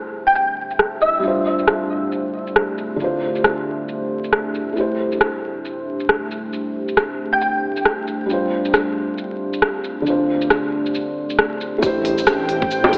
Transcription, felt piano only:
0.00 1.20 A3 medium
0.00 1.21 E4 medium
0.00 1.22 G4 medium
0.00 1.24 C5 medium
1.19 2.96 G3 medium
1.19 2.97 D4 medium
1.25 2.99 F4 medium
1.25 3.00 C5 medium
2.96 4.73 D3 medium
2.96 4.74 D4 medium
3.02 4.75 F4 medium
3.02 4.77 C5 medium
4.72 8.25 A3 medium
4.72 8.27 E4 medium
4.78 8.28 G4 medium
4.78 8.29 C5 medium
8.26 10.02 G3 medium
8.26 10.03 D4 medium
8.31 10.05 F4 medium
8.31 10.06 C5 medium
10.02 11.78 D3 medium
10.02 11.80 D4 medium
10.07 11.81 F4 medium
10.07 11.82 C5 medium
11.78 12.87 A3 medium
11.78 12.90 E4 medium
11.84 12.91 G4 medium
11.84 12.93 C5 medium
12.88 12.98 A3 loud
12.88 12.98 E4 medium
12.94 12.98 G4 medium

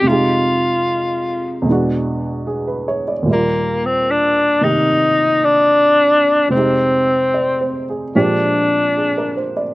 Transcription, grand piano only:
0.01 1.64 F2 soft
0.01 1.66 C3 soft
0.07 1.66 G#3 soft
0.07 1.68 D#4 soft
0.12 1.70 G4 soft
1.62 3.26 E2 soft
1.62 3.27 B2 soft
1.67 3.28 G#3 soft
1.67 3.30 D4 soft
1.72 3.31 F#4 medium
2.47 2.84 G#4 soft
2.67 3.02 B4 soft
2.88 3.13 C#5 soft
3.08 3.29 D5 soft
3.23 6.49 D#2 soft
3.23 6.51 A#2 soft
3.28 6.52 G3 soft
3.28 6.53 D5 soft
3.34 6.55 F4 soft
4.61 6.49 C3 soft
4.61 6.52 D#3 soft
4.61 6.52 A#3 soft
4.61 6.53 G4 soft
6.48 8.12 F2 soft
6.48 8.14 C3 soft
6.53 8.14 G#3 soft
6.53 8.17 D#4 soft
6.59 8.15 G4 soft
7.34 7.84 D5 soft
7.61 8.03 C5 soft
7.90 8.31 G#4 soft
8.15 9.74 A#2 soft
8.15 9.74 F3 soft
8.15 9.74 G#3 soft
8.15 9.74 C4 soft
8.15 9.74 D4 soft
8.15 9.74 G4 soft
8.97 9.35 G#4 soft
9.18 9.52 A#4 soft
9.37 9.62 C5 soft
9.57 9.74 D5 soft

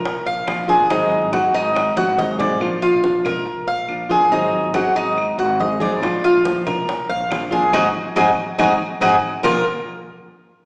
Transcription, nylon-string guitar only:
0.05 muted nylon-string guitar stroke medium
0.47 0.68 F3 medium
0.47 0.68 A#3 soft
0.47 0.68 D4 medium
0.47 0.67 F4 medium
0.68 0.90 A#3 medium
0.68 0.90 D4 medium
0.68 0.89 F4 medium
0.89 1.32 D#3 medium
0.89 1.30 F#3 medium
0.89 1.31 C4 medium
0.89 1.32 D#4 medium
0.89 1.33 G#4 medium
1.32 1.74 F#3 soft
1.32 1.74 C4 soft
1.32 1.75 D#4 medium
1.32 1.75 G#4 medium
1.75 muted nylon-string guitar stroke medium
2.17 2.38 F#3 soft
2.17 2.39 C4 soft
2.17 2.39 D#4 medium
2.17 2.38 G#4 soft
2.39 2.60 F#3 medium
2.39 2.60 C4 medium
2.39 2.60 D#4 medium
2.39 2.60 G#4 medium
2.60 3.02 F3 medium
2.60 3.03 A#3 medium
2.60 3.03 D4 medium
2.60 3.03 F4 medium
3.03 3.44 F3 medium
3.03 3.45 A#3 medium
3.03 3.45 D4 medium
3.03 3.46 F4 medium
3.46 muted nylon-string guitar stroke medium
3.88 4.09 F3 soft
3.88 4.09 A#3 medium
3.88 4.09 D4 medium
3.88 4.08 F4 soft
4.09 4.32 A#3 medium
4.09 4.31 D4 medium
4.09 4.30 F4 medium
4.31 4.73 D#3 medium
4.31 4.72 F#3 medium
4.31 4.73 C4 medium
4.31 4.74 D#4 medium
4.31 4.74 G#4 medium
4.73 5.16 F#3 soft
4.73 5.16 C4 medium
4.73 5.17 D#4 medium
4.73 5.17 G#4 medium
5.17 muted nylon-string guitar stroke medium
5.59 5.80 F#3 soft
5.59 5.80 C4 medium
5.59 5.80 D#4 soft
5.59 5.79 G#4 medium
5.80 6.01 F#3 medium
5.80 6.02 C4 medium
5.80 6.02 D#4 medium
5.80 6.01 G#4 medium
6.02 6.43 F3 medium
6.02 6.44 A#3 medium
6.02 6.45 D4 medium
6.02 6.45 F4 medium
6.44 6.87 F3 medium
6.44 6.87 A#3 medium
6.44 6.88 D4 medium
6.44 6.87 F4 medium
6.88 muted nylon-string guitar stroke medium
7.30 7.51 F3 soft
7.30 7.51 A#3 medium
7.30 7.51 D4 medium
7.30 7.50 F4 medium
7.51 7.73 A#3 medium
7.51 7.73 D4 medium
7.51 7.72 F4 medium
7.73 7.87 G#3 medium
7.73 7.87 C4 medium
7.73 7.87 D#4 medium
8.16 8.30 G#3 medium
8.16 8.30 C4 medium
8.16 8.30 D#4 medium
8.58 8.72 G#3 medium
8.58 8.72 C4 loud
8.58 8.72 D#4 loud
9.01 9.15 G#3 medium
9.01 9.15 C4 loud
9.01 9.15 D#4 medium
9.43 9.61 A#2 medium
9.43 9.61 F3 medium
9.43 9.61 A#3 medium
9.43 9.62 D4 medium
9.43 9.62 F4 medium

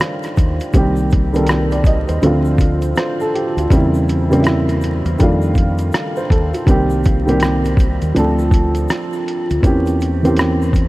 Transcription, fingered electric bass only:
0.38 0.58 D#2 medium
0.74 2.04 C2 loud
2.09 2.21 D#2 medium
2.23 2.92 D2 medium
3.57 3.69 D2 medium
3.71 5.01 E2 medium
5.06 5.18 E2 medium
5.21 5.90 F2 loud
6.31 6.51 D#2 medium
6.67 7.97 C2 loud
8.02 8.14 D#2 medium
8.16 8.86 D2 medium
9.51 9.63 D2 medium
9.64 10.88 E2 loud

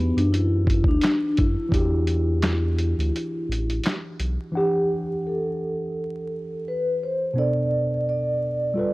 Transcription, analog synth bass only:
0.00 0.12 E2 loud
0.17 0.83 F#2 medium
0.85 0.99 D2 medium
1.39 1.56 F#2 medium
1.72 2.94 E2 loud
2.99 3.12 D2 medium
3.49 3.80 A1 loud
4.20 4.38 B1 medium

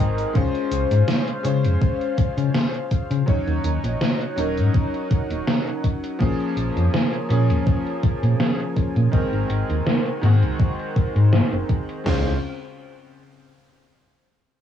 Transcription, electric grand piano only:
0.00 0.37 D#3 medium
0.00 0.33 G#3 medium
0.00 0.37 C4 medium
0.00 0.37 F#4 loud
0.00 0.37 G#4 medium
0.00 0.32 A#4 loud
0.33 1.40 G#3 medium
0.33 1.40 C#4 medium
0.33 1.41 F4 medium
0.33 1.41 C5 loud
1.43 3.23 G#3 medium
1.43 3.24 C#4 medium
1.43 3.24 F4 medium
1.43 3.25 C5 loud
3.26 4.33 F#3 medium
3.26 4.33 C#4 medium
3.26 4.34 D#4 medium
3.26 4.34 C#5 medium
4.36 6.16 F#3 medium
4.36 6.16 C#4 medium
4.36 6.17 D#4 medium
4.36 6.17 A#4 loud
6.19 7.25 F3 loud
6.19 7.26 A#3 medium
6.19 7.26 C#4 medium
6.19 7.27 G#4 loud
7.29 9.08 F3 medium
7.29 9.09 A#3 medium
7.29 9.09 C#4 medium
7.29 9.10 G#4 loud
9.12 10.18 D#3 medium
9.12 10.19 G#3 medium
9.12 10.19 C4 medium
9.12 10.20 A#4 medium
10.21 12.01 D#3 medium
10.21 12.02 G#3 medium
10.21 12.02 C4 medium
10.21 12.03 F#4 loud
12.04 12.33 G#3 medium
12.04 12.33 C#4 medium
12.04 12.34 F4 medium
12.08 12.35 C5 medium

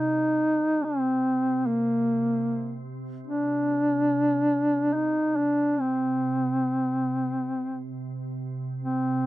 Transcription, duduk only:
0.00 0.86 D#4 medium
0.84 1.68 C4 medium
1.66 2.88 A#3 medium
3.27 4.95 D4 loud
4.94 5.38 D#4 medium
5.37 5.82 D4 loud
5.80 7.96 C4 medium
8.85 9.26 C4 medium

